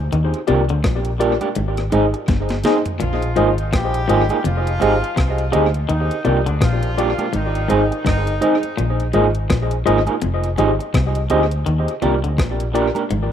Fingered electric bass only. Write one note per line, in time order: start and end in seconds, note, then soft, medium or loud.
0.14 0.32 D#2 loud
0.50 0.68 C2 medium
0.71 0.84 D2 medium
0.85 1.36 A#1 loud
1.58 1.90 G#1 loud
1.94 2.12 G#1 medium
2.29 2.61 G1 loud
3.02 3.34 A#1 loud
3.38 3.70 G#1 medium
3.74 4.06 A#1 medium
4.10 4.29 G#1 loud
4.46 4.78 F1 loud
4.82 5.01 G#1 medium
5.18 5.50 C2 loud
5.55 5.87 D2 medium
5.91 6.09 D#2 loud
6.27 6.45 C2 medium
6.48 6.61 D2 medium
6.62 7.13 A#1 loud
7.35 7.67 G#1 loud
7.71 7.90 G#1 medium
8.07 8.39 G1 medium
8.80 9.11 A#1 loud
9.16 9.47 G#1 loud
9.51 9.83 A#1 loud
9.88 10.06 G#1 loud
10.24 10.55 F1 loud
10.59 10.78 G#1 medium
10.95 11.27 C2 loud
11.32 11.63 D2 medium
11.68 11.86 D#2 loud
12.04 12.22 C2 medium
12.25 12.38 D2 medium
12.39 12.90 A#1 medium
13.12 13.32 G#1 loud